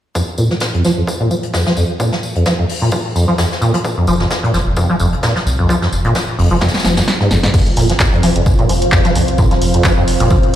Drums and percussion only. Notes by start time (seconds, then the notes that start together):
0.15 kick, tambourine
0.38 tambourine
0.51 snare
0.60 kick, snare, tambourine
0.74 closed hi-hat
0.84 snare, tambourine
1.07 kick, tambourine
1.31 tambourine
1.43 closed hi-hat
1.54 kick, snare, tambourine
1.66 snare
1.77 tambourine
2.00 kick, tambourine
2.12 snare
2.23 tambourine
2.35 closed hi-hat
2.46 kick, snare, tambourine
2.69 open hi-hat
2.92 kick, tambourine
3.16 tambourine
3.38 kick, snare, tambourine
3.52 snare
3.62 tambourine
3.74 closed hi-hat
3.85 kick, tambourine
4.07 tambourine
4.20 snare
4.30 kick, snare, tambourine
4.44 closed hi-hat
4.54 snare, tambourine
4.76 kick, tambourine
4.99 tambourine
5.12 closed hi-hat
5.23 kick, snare, tambourine
5.36 snare
5.47 tambourine
5.69 kick, tambourine
5.82 snare
5.93 tambourine
6.04 closed hi-hat
6.15 kick, snare, tambourine
6.39 open hi-hat
6.61 kick, snare, tambourine
6.68 snare, tambourine
6.74 snare, tambourine
6.79 snare, tambourine
6.85 snare, tambourine
6.97 snare, tambourine
7.08 kick, snare, tambourine
7.20 snare
7.31 snare, tambourine
7.43 snare, closed hi-hat
7.54 kick, crash, tambourine
7.66 closed hi-hat
7.77 open hi-hat, tambourine
7.90 snare, closed hi-hat
8.00 kick, snare, clap, tambourine
8.13 closed hi-hat
8.23 snare, open hi-hat, tambourine
8.36 closed hi-hat
8.46 kick, tambourine
8.59 closed hi-hat
8.69 open hi-hat, tambourine
8.81 closed hi-hat
8.92 kick, snare, clap, tambourine
9.04 snare, closed hi-hat
9.15 open hi-hat, tambourine
9.28 closed hi-hat
9.38 kick, tambourine
9.51 snare, closed hi-hat
9.62 open hi-hat, tambourine
9.74 closed hi-hat
9.84 kick, snare, clap, tambourine
10.07 open hi-hat
10.20 closed hi-hat
10.30 kick, tambourine
10.43 closed hi-hat